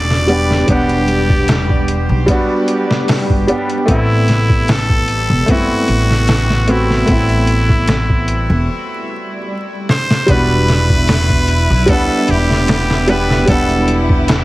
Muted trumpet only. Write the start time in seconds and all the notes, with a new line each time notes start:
Already playing: D5
0.70 G4
3.91 E4
4.71 A4
5.51 F#4
6.70 E4
9.91 C5
10.30 B4
11.90 A4
12.30 G4
13.10 B4
13.50 A4
14.30 G4